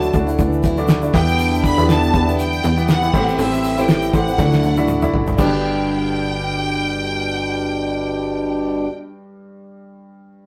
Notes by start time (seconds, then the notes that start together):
Already playing: D2 D3 F#3 A3 D4 E4 F#4 A4 D5
0.02 shaker
0.13 D2 D4 E4 F#4 A4 D5, kick, hi-hat pedal, open hi-hat, shaker
0.27 A3 D4 E4, shaker
0.39 D2 E3 E4, kick, hi-hat pedal, open hi-hat, shaker
0.52 shaker
0.62 F#3 A3 D4 E4, kick, hi-hat pedal, open hi-hat, shaker
0.77 D4 E4 F#4 A4 D5, shaker
0.88 snare, hi-hat pedal, open hi-hat, shaker
1.02 A3 D4 E4 F#4 A4 D5, shaker
1.14 E2 B2 D3 E3 G3 B3 D4 E4 G4 B4 E5 G5, kick, hi-hat pedal, open hi-hat, shaker
1.28 shaker
1.39 hi-hat pedal, open hi-hat, shaker
1.54 shaker
1.64 B5, kick, hi-hat pedal, open hi-hat, shaker
1.77 E2 B2 E3 G3 B3 E4 G4 B4 E5, shaker
1.89 A5, snare, hi-hat pedal, open hi-hat, shaker
2.03 shaker
2.13 E2 B3 E4 G4 B4 D5, kick, hi-hat pedal, open hi-hat, shaker
2.27 E3 G3 B3 E4, shaker
2.39 G5, hi-hat pedal, open hi-hat, shaker
2.53 shaker
2.63 E2 E3 G3 B3 E4, hi-hat pedal, open hi-hat, shaker
2.77 B3 E4 G4 B4 E5, shaker
2.88 F#5, snare, hi-hat pedal, open hi-hat, shaker
3.02 E3 G3 B3 E4 G4 B4 G5, shaker
3.13 A1 A2 C3 E3 G3 C4 E4 G4 A4 C5 E5, kick, snare, crash, shaker
3.28 shaker
3.38 A1 E5, hi-hat pedal, open hi-hat, shaker
3.53 shaker
3.63 hi-hat pedal, open hi-hat, shaker
3.77 A2 E3 G3 C4 E4 G4 A4 C5 E5 G5, shaker
3.88 snare, hi-hat pedal, open hi-hat, shaker
4.02 shaker
4.13 A1 E4 G4 A4 C5 E5 F#5, kick, hi-hat pedal, open hi-hat, shaker
4.27 G3 C4 E4, shaker
4.38 D2 D3 F#3 A3 D4 E4 F#4 A4 D5 E5, kick, snare, shaker
4.52 snare, shaker
4.63 F#3 A3 D4 E4, high tom, shaker
4.77 E4 F#4 A4 D5 E5, high tom, shaker
4.88 mid tom, shaker
5.02 A3 D4 E4 F#4 A4 D5 E5, mid tom, shaker
5.14 F#1, floor tom
5.27 floor tom, shaker
5.32 G2
5.37 G1 G2 B2 D3 G3 D4 G4 B4 G5, kick, crash, shaker
5.41 G3 D5
5.46 B3 D4
5.54 G4